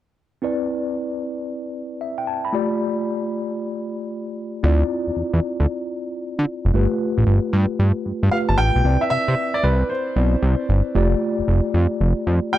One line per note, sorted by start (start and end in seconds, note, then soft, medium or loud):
0.42 2.49 C4 medium
0.42 2.49 E4 medium
0.42 2.49 B4 medium
0.42 2.50 D5 medium
2.01 2.17 E5 medium
2.18 2.26 G5 medium
2.27 2.43 A5 medium
2.45 2.69 B5 medium
2.53 4.59 A3 medium
2.53 4.60 F4 medium
2.53 4.60 G4 medium
2.53 4.60 D5 medium
4.63 4.84 D2 loud
4.63 6.70 C4 medium
4.63 6.70 E4 medium
4.63 6.71 F4 medium
4.63 6.71 D5 medium
5.07 5.11 E2 soft
5.16 5.23 E2 soft
5.33 5.40 E2 medium
5.60 5.67 D2 medium
6.39 6.46 D3 medium
6.65 6.72 F1 medium
6.74 6.87 G1 loud
6.74 8.29 A3 medium
6.74 8.29 F4 medium
6.74 8.29 G4 medium
6.74 8.30 B4 medium
7.18 7.25 A1 medium
7.27 7.40 G1 medium
7.53 7.66 G2 loud
7.79 7.92 G2 medium
8.06 8.13 G2 soft
8.23 8.30 G2 loud
8.31 8.84 A3 medium
8.31 8.85 F4 soft
8.31 8.85 G4 soft
8.31 8.84 B4 medium
8.31 8.36 F5 loud
8.49 8.56 G1 medium
8.49 8.58 A5 medium
8.58 8.71 A1 medium
8.58 9.03 G5 loud
8.76 8.82 B1 medium
8.84 8.98 C2 loud
8.84 10.13 C4 medium
8.84 10.14 E4 medium
8.84 10.14 B4 medium
8.84 10.14 D5 medium
9.01 9.09 E5 medium
9.10 9.18 C3 soft
9.10 9.55 E5 loud
9.28 9.35 C3 medium
9.54 9.64 D5 medium
9.63 9.84 C2 loud
9.63 9.90 B4 medium
9.89 10.65 C5 medium
10.16 10.36 B1 medium
10.16 10.95 C4 medium
10.16 10.95 E4 soft
10.16 10.96 C5 soft
10.16 10.96 D5 medium
10.43 10.56 C2 loud
10.69 10.82 G1 medium
10.95 11.15 F1 loud
10.95 12.50 A3 medium
10.95 12.50 F4 medium
10.95 12.50 G4 medium
10.95 12.51 D5 medium
11.39 11.42 F1 soft
11.48 11.61 F1 medium
11.74 11.87 F2 loud
12.01 12.14 F1 medium
12.27 12.40 F2 medium
12.53 12.58 A3 soft
12.53 12.58 F4 soft
12.53 12.58 G4 soft
12.53 12.58 D5 soft
12.53 12.58 G5 loud